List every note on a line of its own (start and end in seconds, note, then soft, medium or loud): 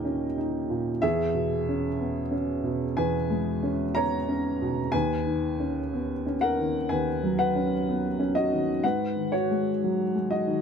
0.00 0.98 D#2 soft
0.00 0.70 A#2 soft
0.00 1.05 D#3 soft
0.00 0.05 C#4 soft
0.00 0.38 D#4 soft
0.00 1.05 G4 medium
0.00 0.99 A#4 medium
0.00 1.05 D#5 medium
0.00 1.02 G5 medium
0.05 0.37 C#4 soft
0.38 0.90 D#4 soft
0.70 1.02 A#2 soft
1.02 2.93 E2 medium
1.02 2.94 G#4 medium
1.02 2.97 E5 medium
1.34 1.86 B2 soft
1.69 2.20 C#4 soft
1.99 2.32 B3 soft
2.31 2.84 C#4 soft
2.64 3.16 B2 soft
2.97 4.89 E2 soft
2.97 3.91 B4 medium
2.97 3.95 G#5 medium
3.30 3.82 G#3 soft
3.63 4.15 C#4 soft
3.95 4.28 B3 soft
3.95 4.89 C#5 medium
3.95 4.93 A#5 medium
4.28 4.80 C#4 soft
4.62 4.93 B2 soft
4.92 6.85 D#2 medium
4.92 6.36 B4 medium
4.92 6.39 G#5 medium
5.27 5.78 D#3 soft
5.60 6.11 C#4 soft
5.93 6.25 B3 soft
6.26 6.77 C#4 soft
6.41 6.86 A#4 medium
6.41 6.89 F#5 medium
6.58 7.09 D#3 soft
6.89 8.80 D#2 soft
6.89 7.35 B4 medium
6.89 7.37 G#5 medium
7.24 7.74 F#3 soft
7.39 8.31 B4 medium
7.39 8.35 F#5 medium
7.55 8.06 C#4 soft
7.89 8.20 B3 soft
8.19 8.71 C#4 soft
8.35 8.81 F#4 medium
8.35 8.83 D#5 medium
8.52 8.84 D#3 soft
8.84 10.62 G#2 soft
8.84 9.29 B4 medium
8.84 9.32 F#5 medium
9.16 9.68 D#3 soft
9.32 10.27 F#4 soft
9.32 10.30 C#5 medium
9.51 10.02 G#3 soft
9.84 10.15 F#3 soft
10.15 10.62 G#3 soft
10.30 10.62 F#4 soft
10.30 10.62 D#5 medium
10.47 10.62 D#3 soft